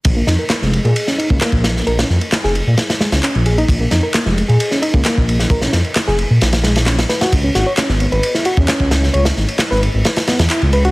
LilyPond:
<<
  \new Staff \with { instrumentName = "Reed electric piano" } { \time 4/4 \key des \major \tempo 4 = 132 r16 bes16 ees'16 bes'16 bes16 aes8 aes'8 des'16 ees'16 bes16 bes4 | bes'16 des'16 r8. aes'16 r4 aes16 r16 des'16 r16 aes'16 ees'16 | r16 bes16 ees'16 bes'16 bes16 aes8 aes'8 des'16 ees'16 bes16 bes4 | bes'16 des'16 r8. aes'16 r4 aes16 r16 des'16 r16 ces''16 ges'16 |
r16 des'16 ges'16 des''16 des'16 ces'8 ces''8 fes'16 ges'16 des'16 des'4 | des''16 fes'16 r8. ces''16 r4 ces'16 r16 fes'16 r16 ces''16 ges'16 | }
  \new Staff \with { instrumentName = "Detuned saw bass" } { \clef bass \time 4/4 \key des \major bes,,16 r16 f,16 r8 f,,16 r16 bes,16 r8. des,16 r16 bes,,8. | bes,,16 r16 f,16 r8 f,,16 r16 bes,16 r8. des,16 r16 bes,,8. | bes,,16 r16 f,16 r8 f,,16 r16 bes,16 r8. des,16 r16 bes,,8. | bes,,16 r16 f,16 r8 f,,16 r16 bes,16 bes,,4. r8 |
des,16 r16 aes,,16 r8 aes,,16 r16 aes,,16 r8. fes,16 r16 des,8. | des,16 r16 aes,,16 r8 aes,,16 r16 aes,,16 r8. fes,16 r16 des,8. | }
  \new DrumStaff \with { instrumentName = "Drums" } \drummode { \time 4/4 <bd cymr>8 <cymr sn>8 <hc cymr sn>16 sn16 cymr16 cymr16 cymr16 sn16 cymr16 bd16 <hc cymr sn>16 bd16 <cymr sn>16 sn16 | cymr16 <cymr sn>16 sn16 cymr16 <hc cymr sn>16 sn16 cymr8 <cymr sn>16 <cymr sn>16 <cymr sn>16 <cymr sn>16 <hc cymr>16 cymr16 cymr16 cymr16 | <bd cymr>8 <cymr sn>8 <hc cymr sn>16 sn16 cymr16 cymr16 cymr16 sn16 cymr16 bd16 <hc cymr sn>16 bd16 cymr16 sn16 | <bd cymr>16 sn16 <cymr sn>16 cymr16 <hc cymr sn>16 sn16 cymr8 <cymr sn>16 <cymr sn>16 <cymr sn>16 <cymr sn>16 <hc cymr sn>16 <cymr sn>16 <cymr sn>16 <cymr sn>16 |
<bd cymr>8 <cymr sn>8 <hc cymr sn>16 sn16 cymr16 cymr16 cymr16 sn16 cymr16 bd16 <hc cymr sn>16 bd16 <cymr sn>16 sn16 | cymr16 <cymr sn>16 sn16 cymr16 <hc cymr sn>16 sn16 cymr8 <cymr sn>16 <cymr sn>16 <cymr sn>16 <cymr sn>16 <hc cymr>16 cymr16 cymr16 cymr16 | }
>>